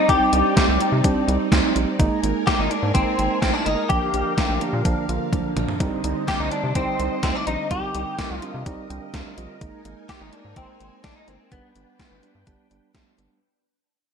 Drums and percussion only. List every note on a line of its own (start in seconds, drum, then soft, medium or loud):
0.09 kick loud
0.09 closed hi-hat medium
0.33 closed hi-hat medium
0.57 kick loud
0.57 snare loud
0.57 closed hi-hat medium
0.81 closed hi-hat medium
1.04 kick loud
1.04 closed hi-hat medium
1.28 closed hi-hat medium
1.52 kick loud
1.52 snare loud
1.52 closed hi-hat medium
1.76 closed hi-hat medium
2.00 kick loud
2.00 closed hi-hat medium
2.24 closed hi-hat medium
2.47 kick loud
2.47 snare loud
2.47 closed hi-hat medium
2.71 closed hi-hat medium
2.95 kick loud
2.95 closed hi-hat medium
3.19 closed hi-hat medium
3.42 kick loud
3.42 snare loud
3.42 closed hi-hat medium
3.66 closed hi-hat medium
3.90 kick loud
3.90 closed hi-hat medium
4.14 closed hi-hat medium
4.38 kick loud
4.38 snare loud
4.38 closed hi-hat medium
4.61 closed hi-hat medium
4.85 kick loud
4.85 closed hi-hat medium
5.09 closed hi-hat medium
5.33 kick loud
5.33 closed hi-hat medium
5.33 high tom medium
5.57 closed hi-hat medium
5.57 mid tom medium
5.69 floor tom medium
5.80 kick loud
5.80 closed hi-hat medium
6.04 closed hi-hat medium
6.28 kick loud
6.28 snare loud
6.28 closed hi-hat medium
6.51 closed hi-hat medium
6.75 kick loud
6.75 closed hi-hat medium
7.00 closed hi-hat medium
7.23 kick loud
7.23 snare loud
7.23 closed hi-hat medium
7.47 closed hi-hat medium
7.71 kick loud
7.71 closed hi-hat medium
7.95 closed hi-hat medium
8.19 kick loud
8.19 snare loud
8.19 closed hi-hat medium
8.42 closed hi-hat medium
8.66 kick loud
8.66 closed hi-hat medium
8.90 closed hi-hat medium
9.14 kick loud
9.14 snare loud
9.14 closed hi-hat medium
9.38 closed hi-hat medium
9.61 kick loud
9.61 closed hi-hat medium
9.85 closed hi-hat medium
10.09 kick loud
10.09 snare loud
10.09 closed hi-hat medium
10.33 closed hi-hat medium
10.56 kick loud
10.56 closed hi-hat medium
10.80 closed hi-hat medium
11.04 kick loud
11.04 snare loud
11.04 closed hi-hat medium
11.28 closed hi-hat medium
11.52 kick loud
11.52 closed hi-hat medium
11.76 closed hi-hat medium
11.99 kick loud
11.99 snare loud
11.99 closed hi-hat medium
12.23 closed hi-hat medium
12.47 kick loud
12.47 closed hi-hat medium
12.71 closed hi-hat medium
12.95 kick loud
12.95 snare loud
12.95 closed hi-hat medium
13.18 closed hi-hat medium